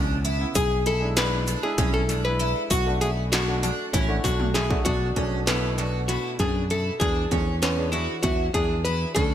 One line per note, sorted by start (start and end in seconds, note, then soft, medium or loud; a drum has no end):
0.00 0.44 C#2 medium
0.00 0.35 B2 medium
0.00 0.35 B3 medium
0.00 0.35 C#4 medium
0.00 0.16 D4 medium
0.00 0.29 E4 medium
0.25 0.47 E4 medium
0.25 closed hi-hat medium
0.39 0.55 C#3 medium
0.39 0.56 B3 medium
0.39 0.56 E4 medium
0.55 1.55 B1 medium
0.55 0.77 G#4 medium
0.55 0.84 G#4 loud
0.55 kick loud
0.55 closed hi-hat medium
0.55 shaker medium
0.86 1.08 E4 medium
0.86 1.15 A4 medium
0.86 closed hi-hat medium
1.00 1.57 G#3 medium
1.00 1.58 D4 medium
1.00 1.58 E4 medium
1.16 1.39 D4 medium
1.16 1.63 B4 loud
1.16 snare loud
1.16 closed hi-hat medium
1.47 1.70 D4 medium
1.47 closed hi-hat medium
1.47 shaker soft
1.62 2.19 G#3 medium
1.62 2.20 D4 medium
1.62 2.20 E4 medium
1.62 1.93 G#4 medium
1.78 2.53 B1 medium
1.78 2.00 C#4 medium
1.78 kick loud
1.78 snare soft
1.78 closed hi-hat medium
1.78 shaker soft
1.94 2.24 A4 loud
2.09 2.31 D4 medium
2.09 snare soft
2.09 closed hi-hat medium
2.09 shaker soft
2.25 2.71 G#3 medium
2.25 2.71 D4 medium
2.25 2.71 E4 medium
2.25 2.70 B4 medium
2.39 2.62 E4 medium
2.39 closed hi-hat medium
2.70 3.70 B1 medium
2.70 2.92 F#4 medium
2.70 3.01 F#4 loud
2.70 kick loud
2.70 closed hi-hat medium
2.70 shaker medium
2.86 3.42 A3 medium
2.86 3.43 D4 medium
2.86 3.43 F#4 medium
3.01 3.23 E4 medium
3.01 3.09 G#4 medium
3.01 closed hi-hat medium
3.01 shaker soft
3.32 3.54 D4 medium
3.32 4.20 F#4 medium
3.32 snare loud
3.32 closed hi-hat medium
3.47 4.04 A3 medium
3.47 4.04 D4 medium
3.47 4.05 F#4 medium
3.63 3.85 D4 medium
3.63 snare soft
3.63 closed hi-hat medium
3.63 shaker soft
3.93 4.19 A1 medium
3.93 4.16 C#4 medium
3.93 4.25 E4 medium
3.93 kick loud
3.93 closed hi-hat medium
3.93 shaker soft
4.08 4.65 A3 medium
4.08 4.65 D4 medium
4.08 4.66 F#4 medium
4.24 4.74 B1 medium
4.24 4.46 D4 medium
4.24 4.54 F#4 medium
4.24 kick medium
4.24 snare soft
4.24 closed hi-hat medium
4.24 shaker soft
4.40 high tom medium
4.54 4.77 E4 medium
4.54 4.84 G#4 medium
4.54 snare medium
4.54 closed hi-hat medium
4.69 4.84 A3 medium
4.69 4.85 D4 medium
4.69 4.86 F#4 medium
4.69 kick loud
4.85 5.11 B1 medium
4.85 5.14 B2 medium
4.85 5.14 A3 medium
4.85 5.07 D4 medium
4.85 5.14 D4 medium
4.85 5.49 F#4 medium
4.85 kick loud
4.85 closed hi-hat medium
5.16 6.16 B1 medium
5.16 5.45 B2 medium
5.16 5.45 A3 medium
5.16 5.38 C#4 medium
5.16 5.45 D4 medium
5.16 kick medium
5.16 closed hi-hat soft
5.47 5.75 B2 medium
5.47 5.76 A3 medium
5.47 6.11 B3 medium
5.47 5.69 B3 medium
5.47 5.76 E4 medium
5.47 snare loud
5.47 closed hi-hat medium
5.78 6.91 B2 medium
5.78 6.91 A3 medium
5.78 6.92 D4 medium
5.78 6.00 F#4 medium
5.78 snare soft
5.78 closed hi-hat medium
6.08 6.31 E4 medium
6.08 6.39 F#4 medium
6.08 snare soft
6.08 closed hi-hat medium
6.39 6.89 F#2 medium
6.39 6.62 D4 medium
6.39 6.70 G#4 medium
6.39 kick medium
6.39 closed hi-hat soft
6.70 6.92 E4 medium
6.70 6.99 A4 medium
6.70 closed hi-hat soft
7.00 7.26 E2 medium
7.00 7.72 E3 medium
7.00 7.23 D4 medium
7.00 7.72 D4 medium
7.00 7.58 G#4 loud
7.00 7.72 G#4 medium
7.00 kick medium
7.00 closed hi-hat medium
7.31 8.06 E2 medium
7.31 7.54 C#4 medium
7.31 kick medium
7.31 closed hi-hat soft
7.62 7.84 B3 medium
7.62 7.91 C#4 medium
7.62 snare medium
7.62 closed hi-hat medium
7.77 8.48 E3 medium
7.77 8.48 D4 medium
7.77 8.49 G#4 medium
7.92 8.21 E4 medium
7.92 8.15 F#4 medium
7.92 closed hi-hat soft
8.23 8.49 E2 medium
8.23 8.46 E4 medium
8.23 8.54 F#4 medium
8.23 kick loud
8.23 closed hi-hat medium
8.53 9.04 E2 medium
8.53 9.11 E3 medium
8.53 9.11 D4 medium
8.53 8.77 D4 medium
8.53 8.84 G#4 medium
8.53 9.12 G#4 medium
8.53 kick medium
8.53 closed hi-hat medium
8.85 9.08 E4 medium
8.85 9.14 B4 medium
8.85 closed hi-hat soft
9.15 9.34 D2 medium
9.15 9.34 D3 medium
9.15 9.34 A3 medium
9.15 9.34 C#4 medium
9.15 9.34 D4 medium
9.15 9.34 A4 loud
9.15 kick loud
9.15 closed hi-hat medium